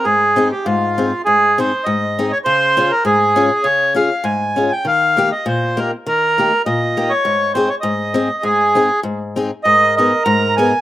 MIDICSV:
0, 0, Header, 1, 4, 480
1, 0, Start_track
1, 0, Key_signature, -4, "major"
1, 0, Tempo, 598802
1, 44, Time_signature, 2, 2, 24, 8
1, 6763, Tempo, 607287
1, 8639, End_track
2, 0, Start_track
2, 0, Title_t, "Accordion"
2, 0, Program_c, 0, 21
2, 35, Note_on_c, 0, 68, 80
2, 386, Note_off_c, 0, 68, 0
2, 413, Note_on_c, 0, 67, 68
2, 523, Note_on_c, 0, 65, 68
2, 531, Note_off_c, 0, 67, 0
2, 977, Note_off_c, 0, 65, 0
2, 1004, Note_on_c, 0, 68, 91
2, 1272, Note_off_c, 0, 68, 0
2, 1278, Note_on_c, 0, 72, 69
2, 1476, Note_on_c, 0, 75, 64
2, 1481, Note_off_c, 0, 72, 0
2, 1858, Note_on_c, 0, 73, 84
2, 1859, Note_off_c, 0, 75, 0
2, 1907, Note_off_c, 0, 73, 0
2, 1961, Note_on_c, 0, 72, 106
2, 2333, Note_on_c, 0, 70, 84
2, 2338, Note_off_c, 0, 72, 0
2, 2434, Note_off_c, 0, 70, 0
2, 2445, Note_on_c, 0, 68, 79
2, 2914, Note_on_c, 0, 73, 92
2, 2935, Note_off_c, 0, 68, 0
2, 3154, Note_off_c, 0, 73, 0
2, 3175, Note_on_c, 0, 77, 76
2, 3400, Note_on_c, 0, 80, 68
2, 3407, Note_off_c, 0, 77, 0
2, 3785, Note_off_c, 0, 80, 0
2, 3785, Note_on_c, 0, 79, 78
2, 3896, Note_off_c, 0, 79, 0
2, 3907, Note_on_c, 0, 77, 82
2, 4244, Note_off_c, 0, 77, 0
2, 4263, Note_on_c, 0, 75, 71
2, 4377, Note_off_c, 0, 75, 0
2, 4389, Note_on_c, 0, 72, 70
2, 4640, Note_on_c, 0, 70, 64
2, 4647, Note_off_c, 0, 72, 0
2, 4739, Note_off_c, 0, 70, 0
2, 4871, Note_on_c, 0, 70, 93
2, 5308, Note_off_c, 0, 70, 0
2, 5339, Note_on_c, 0, 75, 75
2, 5690, Note_on_c, 0, 73, 90
2, 5709, Note_off_c, 0, 75, 0
2, 6031, Note_off_c, 0, 73, 0
2, 6042, Note_on_c, 0, 72, 71
2, 6164, Note_on_c, 0, 73, 79
2, 6165, Note_off_c, 0, 72, 0
2, 6215, Note_off_c, 0, 73, 0
2, 6259, Note_on_c, 0, 75, 68
2, 6758, Note_on_c, 0, 68, 84
2, 6764, Note_off_c, 0, 75, 0
2, 7209, Note_off_c, 0, 68, 0
2, 7710, Note_on_c, 0, 75, 98
2, 7960, Note_off_c, 0, 75, 0
2, 7971, Note_on_c, 0, 75, 75
2, 8184, Note_off_c, 0, 75, 0
2, 8190, Note_on_c, 0, 82, 83
2, 8433, Note_off_c, 0, 82, 0
2, 8447, Note_on_c, 0, 80, 82
2, 8639, Note_off_c, 0, 80, 0
2, 8639, End_track
3, 0, Start_track
3, 0, Title_t, "Trumpet"
3, 0, Program_c, 1, 56
3, 7728, Note_on_c, 1, 70, 88
3, 8639, Note_off_c, 1, 70, 0
3, 8639, End_track
4, 0, Start_track
4, 0, Title_t, "Steel-string acoustic guitar"
4, 0, Program_c, 2, 25
4, 40, Note_on_c, 2, 44, 51
4, 290, Note_on_c, 2, 60, 56
4, 296, Note_on_c, 2, 63, 39
4, 305, Note_on_c, 2, 68, 52
4, 399, Note_off_c, 2, 60, 0
4, 400, Note_off_c, 2, 63, 0
4, 406, Note_off_c, 2, 68, 0
4, 410, Note_off_c, 2, 44, 0
4, 529, Note_on_c, 2, 44, 69
4, 784, Note_on_c, 2, 60, 54
4, 789, Note_on_c, 2, 63, 39
4, 792, Note_on_c, 2, 68, 50
4, 887, Note_off_c, 2, 60, 0
4, 889, Note_off_c, 2, 68, 0
4, 890, Note_off_c, 2, 63, 0
4, 894, Note_off_c, 2, 44, 0
4, 1014, Note_on_c, 2, 44, 54
4, 1268, Note_on_c, 2, 60, 61
4, 1273, Note_on_c, 2, 63, 53
4, 1279, Note_on_c, 2, 68, 66
4, 1368, Note_off_c, 2, 60, 0
4, 1372, Note_off_c, 2, 63, 0
4, 1373, Note_off_c, 2, 68, 0
4, 1376, Note_off_c, 2, 44, 0
4, 1494, Note_on_c, 2, 44, 70
4, 1753, Note_on_c, 2, 60, 53
4, 1756, Note_on_c, 2, 63, 56
4, 1761, Note_on_c, 2, 68, 46
4, 1848, Note_off_c, 2, 60, 0
4, 1850, Note_off_c, 2, 63, 0
4, 1850, Note_off_c, 2, 68, 0
4, 1852, Note_off_c, 2, 44, 0
4, 1970, Note_on_c, 2, 49, 66
4, 2219, Note_on_c, 2, 61, 67
4, 2224, Note_on_c, 2, 65, 57
4, 2231, Note_on_c, 2, 68, 56
4, 2319, Note_off_c, 2, 61, 0
4, 2322, Note_off_c, 2, 65, 0
4, 2323, Note_off_c, 2, 68, 0
4, 2327, Note_off_c, 2, 49, 0
4, 2442, Note_on_c, 2, 44, 72
4, 2693, Note_on_c, 2, 61, 57
4, 2701, Note_on_c, 2, 65, 50
4, 2703, Note_on_c, 2, 68, 57
4, 2794, Note_off_c, 2, 61, 0
4, 2799, Note_off_c, 2, 65, 0
4, 2799, Note_off_c, 2, 68, 0
4, 2803, Note_off_c, 2, 44, 0
4, 2918, Note_on_c, 2, 49, 57
4, 3162, Note_on_c, 2, 61, 50
4, 3172, Note_on_c, 2, 65, 54
4, 3177, Note_on_c, 2, 68, 59
4, 3270, Note_off_c, 2, 61, 0
4, 3275, Note_off_c, 2, 65, 0
4, 3275, Note_off_c, 2, 68, 0
4, 3282, Note_off_c, 2, 49, 0
4, 3396, Note_on_c, 2, 44, 67
4, 3656, Note_on_c, 2, 61, 47
4, 3665, Note_on_c, 2, 65, 41
4, 3669, Note_on_c, 2, 68, 50
4, 3760, Note_off_c, 2, 61, 0
4, 3765, Note_off_c, 2, 65, 0
4, 3767, Note_off_c, 2, 44, 0
4, 3767, Note_off_c, 2, 68, 0
4, 3886, Note_on_c, 2, 51, 54
4, 4143, Note_on_c, 2, 58, 54
4, 4147, Note_on_c, 2, 63, 48
4, 4155, Note_on_c, 2, 67, 67
4, 4247, Note_off_c, 2, 58, 0
4, 4247, Note_off_c, 2, 63, 0
4, 4252, Note_off_c, 2, 67, 0
4, 4254, Note_off_c, 2, 51, 0
4, 4375, Note_on_c, 2, 46, 67
4, 4625, Note_on_c, 2, 58, 58
4, 4627, Note_on_c, 2, 63, 49
4, 4635, Note_on_c, 2, 67, 49
4, 4729, Note_off_c, 2, 58, 0
4, 4731, Note_off_c, 2, 63, 0
4, 4732, Note_off_c, 2, 67, 0
4, 4739, Note_off_c, 2, 46, 0
4, 4862, Note_on_c, 2, 51, 59
4, 5113, Note_on_c, 2, 58, 51
4, 5118, Note_on_c, 2, 63, 51
4, 5125, Note_on_c, 2, 67, 54
4, 5212, Note_off_c, 2, 58, 0
4, 5215, Note_off_c, 2, 63, 0
4, 5216, Note_off_c, 2, 67, 0
4, 5220, Note_off_c, 2, 51, 0
4, 5341, Note_on_c, 2, 46, 69
4, 5587, Note_on_c, 2, 58, 54
4, 5592, Note_on_c, 2, 63, 45
4, 5593, Note_on_c, 2, 67, 57
4, 5686, Note_off_c, 2, 58, 0
4, 5686, Note_off_c, 2, 63, 0
4, 5688, Note_off_c, 2, 67, 0
4, 5695, Note_off_c, 2, 46, 0
4, 5810, Note_on_c, 2, 44, 60
4, 6053, Note_on_c, 2, 60, 57
4, 6063, Note_on_c, 2, 63, 55
4, 6067, Note_on_c, 2, 68, 67
4, 6155, Note_off_c, 2, 60, 0
4, 6161, Note_off_c, 2, 63, 0
4, 6161, Note_off_c, 2, 68, 0
4, 6167, Note_off_c, 2, 44, 0
4, 6277, Note_on_c, 2, 44, 70
4, 6526, Note_on_c, 2, 60, 61
4, 6529, Note_on_c, 2, 63, 40
4, 6536, Note_on_c, 2, 68, 60
4, 6632, Note_off_c, 2, 63, 0
4, 6633, Note_off_c, 2, 60, 0
4, 6637, Note_off_c, 2, 68, 0
4, 6641, Note_off_c, 2, 44, 0
4, 6760, Note_on_c, 2, 44, 60
4, 7011, Note_on_c, 2, 60, 55
4, 7017, Note_on_c, 2, 63, 50
4, 7022, Note_on_c, 2, 68, 58
4, 7115, Note_off_c, 2, 60, 0
4, 7118, Note_off_c, 2, 63, 0
4, 7121, Note_off_c, 2, 68, 0
4, 7124, Note_off_c, 2, 44, 0
4, 7234, Note_on_c, 2, 44, 68
4, 7493, Note_on_c, 2, 60, 59
4, 7497, Note_on_c, 2, 63, 53
4, 7503, Note_on_c, 2, 68, 60
4, 7598, Note_off_c, 2, 60, 0
4, 7600, Note_off_c, 2, 63, 0
4, 7603, Note_off_c, 2, 68, 0
4, 7604, Note_off_c, 2, 44, 0
4, 7724, Note_on_c, 2, 44, 53
4, 7985, Note_on_c, 2, 59, 51
4, 7988, Note_on_c, 2, 63, 44
4, 7993, Note_on_c, 2, 68, 58
4, 8085, Note_off_c, 2, 59, 0
4, 8085, Note_off_c, 2, 63, 0
4, 8089, Note_off_c, 2, 44, 0
4, 8089, Note_off_c, 2, 68, 0
4, 8201, Note_on_c, 2, 44, 76
4, 8457, Note_on_c, 2, 59, 53
4, 8462, Note_on_c, 2, 63, 48
4, 8466, Note_on_c, 2, 68, 68
4, 8557, Note_off_c, 2, 59, 0
4, 8558, Note_off_c, 2, 63, 0
4, 8561, Note_off_c, 2, 68, 0
4, 8562, Note_off_c, 2, 44, 0
4, 8639, End_track
0, 0, End_of_file